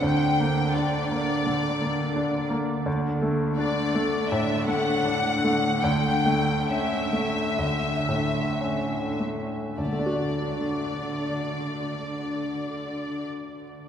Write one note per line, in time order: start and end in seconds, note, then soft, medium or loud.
0.00 1.42 D2 soft
0.00 2.83 D3 soft
0.00 0.74 G5 medium
0.40 0.98 A#3 soft
0.75 1.33 D4 soft
0.75 2.50 D5 medium
1.11 1.67 A#3 soft
1.47 2.02 D3 soft
1.81 2.37 A#3 soft
2.16 2.73 D4 soft
2.50 2.86 A#3 soft
2.86 4.26 D2 medium
2.86 9.41 D3 soft
3.22 3.79 A3 soft
3.57 4.16 D4 soft
3.57 4.26 D5 medium
3.95 4.53 A3 soft
4.29 4.91 A2 soft
4.29 4.67 E5 medium
4.67 5.28 A3 soft
4.67 5.81 F#5 medium
5.05 5.67 D4 soft
5.44 5.84 A3 soft
5.83 7.56 D2 medium
5.83 6.69 G5 medium
6.26 6.95 A3 soft
6.68 7.41 C#4 soft
6.68 9.20 E5 medium
7.13 7.89 A3 soft
7.59 9.73 D2 soft
8.09 8.96 A2 soft
8.61 9.56 C#4 soft
9.20 9.78 A3 soft
9.78 13.26 D2 soft
9.78 13.27 D3 soft
9.78 13.26 D5 soft
9.85 13.33 D3 soft
9.93 13.40 A3 soft
9.99 13.47 D4 soft
10.06 13.54 F#4 soft
10.14 13.62 D5 soft